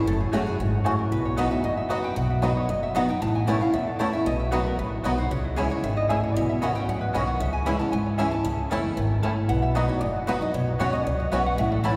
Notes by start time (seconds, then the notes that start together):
0.06 F#1 F#2 A4
0.20 G#4
0.32 F#1 F#3 A3 C#4 F#4 G#4 C#5 G#5
0.46 C#4 F#4 G#4
0.59 G#1 G#2
0.84 A1 A2 A3 C#4 F#4 C#5 G#5
0.98 A#4
1.11 B1 B2 B4
1.25 C#5
1.36 F#3 B3 D#4 F#4 D#5 B5
1.51 D#4 F#4 E5
1.64 F#1 F#2 D#5
1.77 E5
1.89 F#3 B3 D#4 F#4 D#5 F#5 B5
2.04 G5
2.16 B1 B2 F#5
2.30 E5
2.42 F#3 B3 D#4 F#4 D#5 B5
2.57 C#5
2.68 F#1 F#2 D#5
2.83 E5
2.94 F#3 B3 D#4 F#4 D#5 F#5 B5
3.09 D#4 F#4 G5
3.21 A1 A2 A5
3.35 G#5
3.47 E3 A3 C#4 E4 C#5 F#5 A5
3.61 C#4 E4 F5
3.73 E2 E5
3.87 A4
3.99 E3 A3 C#4 E4 C#5 A5
4.13 C#4 E4 E5
4.26 B1 B2 D#5
4.40 E5
4.51 F#3 B3 D#4 F#4 C#5 D#5 B5
4.66 A#4
4.78 A1 F#2 B4
5.03 B1 F#3 B3 D#4 F#4 D#5 B5
5.18 D#4 F#4 C5
5.31 C#2 C#3 C#5
5.44 E4
5.56 E3 G#3 C#4 E4 G#4 E5 G#5
5.70 C#4 E4 C#5
5.83 G#1 D#3 E5
5.97 D#5
6.09 A2 C#4 E4 G#4 E5 G#5
6.24 C#5
6.36 B1 B2 D#5
6.49 E5
6.61 G#1 B2 D#3 B3 C#4 F#4 D#5 F#5 B5
6.75 C#4 F#4 G5
6.88 A1 F#2 F#5
7.01 B4
7.13 B1 B2 D#3 B3 C#4 F#4 D#5 B5
7.27 F#5
7.40 C#2 C#3 E5
7.53 G#5
7.65 E3 G#3 C#4 E4 G#4 E5 G#5 B5
7.79 C#4 E4 A5
7.92 G#1 G#2 G#5
8.06 C#5
8.18 E3 G#3 C#4 E4 G#4 E5 G#5
8.31 C#4 E4 A5
8.45 C#2 C#3
8.70 F#1 E3 A3 B3 C#4 E4 A4 E5 B5
8.97 G#1 D#3
9.22 A1 A2 A3 C#4 E4 A4 E5 B5
9.49 B1 B2 F#5
9.62 E5
9.75 F#3 B3 D#4 F#4 D#5 B5
9.88 D#4 F#4 C#5
10.01 F#1 F#2 D#5
10.16 F#4
10.27 F#3 B3 D#4 F#4 B4 D#5 B5
10.41 D#4 F#4 D#5
10.54 B1 B2 C#5
10.68 F#4
10.79 D#2 F#3 B3 C#4 F#4 B4 C#5 F#5
10.93 C#4 F#4 D#5
11.06 C#2 F#2 C#5
11.20 D#5
11.31 B1 F#3 B3 C#4 F#4 C#5 E5 F#5
11.46 F#5
11.58 A1 A2 E5
11.72 A4
11.83 E3 A3 C#4 E4 C#5 A5 B5